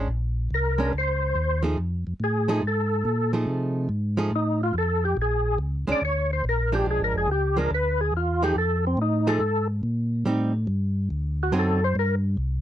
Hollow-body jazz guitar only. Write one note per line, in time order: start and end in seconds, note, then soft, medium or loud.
0.78 0.91 G#3 medium
0.78 0.92 C#4 medium
0.78 0.92 D4 medium
1.63 1.76 F3 medium
1.63 1.76 A3 medium
1.63 1.76 D#4 medium
1.63 1.77 G#4 medium
2.48 2.61 F3 medium
2.48 2.61 A3 medium
2.48 2.62 D#4 medium
2.48 2.61 G#4 medium
3.33 3.87 F3 medium
3.33 3.87 A3 medium
3.33 3.87 D#4 medium
3.33 3.87 G#4 medium
4.17 4.30 F3 medium
4.17 4.30 A3 medium
4.17 4.31 D#4 medium
4.17 4.31 G#4 medium
5.87 6.00 G#3 medium
5.87 6.00 C#4 medium
5.87 6.01 D4 medium
6.72 7.26 F3 medium
6.72 7.26 G#3 medium
6.72 7.26 D4 medium
7.57 7.69 F3 medium
7.57 7.70 G#3 medium
7.57 7.70 D4 medium
8.42 8.55 F3 medium
8.42 8.55 A3 medium
8.42 8.55 D#4 medium
8.42 8.55 G#4 medium
9.27 9.40 F3 medium
9.27 9.40 A3 medium
9.27 9.40 D#4 medium
9.27 9.40 G#4 medium
10.26 10.51 G3 medium
10.26 10.52 C4 medium
10.26 10.52 D#4 medium
11.52 11.78 D3 medium
11.52 11.78 F#3 medium
11.52 11.79 C4 medium
11.52 11.79 D#4 medium